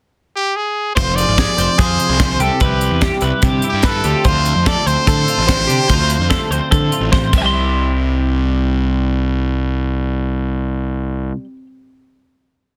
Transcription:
0.36 0.57 G4 medium
0.56 0.95 G#4 medium
0.95 1.23 F1 medium
0.95 2.38 F3 medium
0.95 1.17 C5 loud
0.95 1.38 C5 medium
0.95 kick loud
0.95 closed hi-hat medium
1.16 2.19 G#4 medium
1.16 1.81 D5 loud
1.16 closed hi-hat medium
1.28 1.45 G#1 medium
1.38 1.58 G#4 medium
1.38 kick loud
1.38 snare loud
1.38 closed hi-hat medium
1.57 1.67 F1 medium
1.57 3.01 C4 medium
1.57 1.78 C5 medium
1.57 closed hi-hat medium
1.78 1.96 F2 loud
1.78 2.38 F4 medium
1.78 2.19 G#4 medium
1.78 2.43 C5 loud
1.78 kick loud
1.78 closed hi-hat medium
1.99 2.38 C3 medium
1.99 closed hi-hat medium
2.09 2.36 C2 medium
2.20 2.38 G#4 medium
2.20 2.40 C5 medium
2.20 kick loud
2.20 snare loud
2.20 closed hi-hat medium
2.39 2.48 C2 medium
2.39 3.43 C3 medium
2.39 2.61 G4 medium
2.39 2.61 A4 medium
2.39 closed hi-hat medium
2.60 2.88 C2 medium
2.60 3.20 E4 medium
2.60 3.00 G4 medium
2.60 3.02 B4 medium
2.60 kick loud
2.60 closed hi-hat medium
2.81 closed hi-hat medium
2.91 3.09 E2 medium
3.01 4.04 G3 medium
3.01 3.22 G4 medium
3.01 kick loud
3.01 snare loud
3.01 closed hi-hat medium
3.21 3.31 C2 medium
3.21 3.63 E4 soft
3.21 3.43 B4 medium
3.21 closed hi-hat medium
3.42 4.04 G2 medium
3.42 3.61 C3 loud
3.42 3.84 G4 medium
3.42 kick loud
3.42 closed hi-hat medium
3.62 3.84 E4 medium
3.62 closed hi-hat medium
3.69 3.85 G4 medium
3.73 4.00 G2 medium
3.83 4.03 E4 medium
3.83 4.05 B4 medium
3.83 kick loud
3.83 snare loud
3.83 closed hi-hat medium
3.87 4.24 A4 medium
4.04 4.13 D2 medium
4.04 5.66 D3 medium
4.04 4.66 A3 medium
4.04 4.87 C4 medium
4.04 4.26 F4 medium
4.04 4.25 G4 medium
4.04 closed hi-hat medium
4.24 4.52 D2 medium
4.24 5.28 F4 medium
4.24 4.66 C5 medium
4.24 4.69 C5 medium
4.24 kick loud
4.24 closed hi-hat medium
4.45 closed hi-hat medium
4.56 4.74 F2 medium
4.66 5.66 A3 medium
4.66 4.87 A4 medium
4.66 4.88 D5 loud
4.66 kick loud
4.66 snare loud
4.66 closed hi-hat medium
4.86 4.95 D2 medium
4.86 5.49 C4 medium
4.86 5.07 C5 medium
4.86 7.12 C5 loud
4.86 closed hi-hat medium
5.06 5.66 A2 medium
5.06 5.25 D3 medium
5.06 5.47 A4 medium
5.06 kick loud
5.06 closed hi-hat medium
5.28 5.67 F4 medium
5.28 closed hi-hat medium
5.38 5.64 A1 medium
5.48 6.51 C4 medium
5.48 5.68 C5 medium
5.48 kick loud
5.48 snare loud
5.48 closed hi-hat medium
5.67 5.77 C3 medium
5.67 7.30 D3 medium
5.67 5.88 G4 medium
5.67 closed hi-hat medium
5.88 6.16 D2 medium
5.88 6.91 F4 medium
5.88 6.29 C5 medium
5.88 kick medium
5.88 closed hi-hat medium
6.10 closed hi-hat medium
6.19 6.37 F2 medium
6.30 7.30 A3 medium
6.30 6.51 A4 medium
6.30 kick loud
6.30 snare loud
6.30 closed hi-hat medium
6.50 6.59 D2 medium
6.50 7.12 C4 medium
6.50 6.71 C5 medium
6.50 closed hi-hat medium
6.71 7.30 A2 medium
6.71 6.89 D3 medium
6.71 7.12 A4 medium
6.71 kick loud
6.71 closed hi-hat medium
6.92 7.30 F4 medium
6.92 closed hi-hat medium
7.00 7.10 A1 medium
7.12 7.30 A1 medium
7.12 7.33 C4 medium
7.12 7.32 C5 medium
7.12 kick loud
7.12 snare medium
7.33 11.31 C2 medium
7.33 11.37 C3 medium
7.33 kick loud
7.33 crash medium
7.38 7.42 E5 medium
7.38 7.45 G5 medium
7.44 11.46 G3 medium
7.44 11.44 C6 medium
7.54 11.56 E4 medium
7.64 11.66 G4 soft

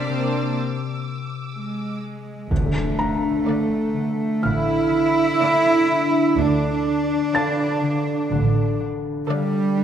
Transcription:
0.00 2.55 C4 soft
0.00 0.57 D5 soft
0.00 1.99 D6 soft
0.00 0.42 F6 soft
0.08 0.17 C3 soft
0.08 2.55 C3 soft
0.08 0.56 A#3 soft
0.08 0.56 C4 soft
0.08 0.56 D4 soft
0.08 0.56 C5 soft
0.42 1.98 E6 soft
1.53 2.46 G#3 soft
2.50 3.29 D2 soft
2.50 3.47 D3 soft
2.50 4.44 A3 medium
2.50 impact medium
2.99 5.88 D4 soft
2.99 5.85 A#5 soft
3.47 3.94 D3 soft
3.47 4.21 A3 soft
3.47 4.21 D5 soft
3.47 4.21 F5 soft
3.96 4.43 D3 soft
4.43 5.23 A1 soft
4.43 4.91 D3 medium
4.43 6.37 E4 medium
4.43 7.30 F6 soft
4.93 5.40 D3 soft
5.41 6.36 D3 soft
5.41 6.15 A3 soft
5.41 6.15 D5 soft
5.41 6.15 F5 soft
5.89 6.85 D4 soft
6.37 7.16 D2 medium
6.37 7.33 D3 medium
6.37 8.79 D4 medium
6.86 9.76 D4 soft
7.34 7.81 D3 soft
7.34 8.08 A4 soft
7.34 8.08 D5 soft
7.34 8.09 F5 soft
7.34 9.84 A5 soft
7.34 9.84 A6 soft
7.83 8.30 D3 soft
8.32 9.10 A1 medium
8.32 8.79 D3 medium
8.80 9.27 D3 soft
9.28 9.84 D3 soft
9.28 9.84 G3 medium
9.28 9.84 A4 medium
9.28 9.84 D5 medium
9.28 9.84 F5 soft
9.77 9.84 D4 soft

